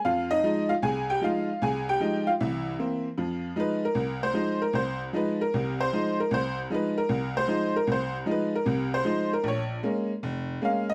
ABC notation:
X:1
M:4/4
L:1/8
Q:"Swing" 1/4=153
K:Fm
V:1 name="Honky-tonk piano"
[Ff] [Ee]2 [Ff] [Aa] [Gg] [Ff]2 | [Aa] [Gg]2 [Ff] [=E=e]3 z | z2 =B _B2 c2 B | c z =B _B2 c2 B |
c z =B _B2 c2 B | c z =B _B2 c2 B | d z4 z f e |]
V:2 name="Honky-tonk piano" clef=bass
F,,2 [F,A,E] z C,,2 [F,A,E] z | C,,2 [F,A,E] z [C,,=E,]2 [E,B,C] z | [F,,F,]2 [F,A,E] z C,,2 [F,A,E] z | C,,2 [F,A,E] z [C,,C,]2 [F,A,E] z |
C,,2 [F,A,E] z C,,2 [F,A,E] z | C,,2 [F,A,E] z [C,,C,]2 [F,A,E] z | B,,,2 [A,B,D] z F,,,2 [A,B,D] z |]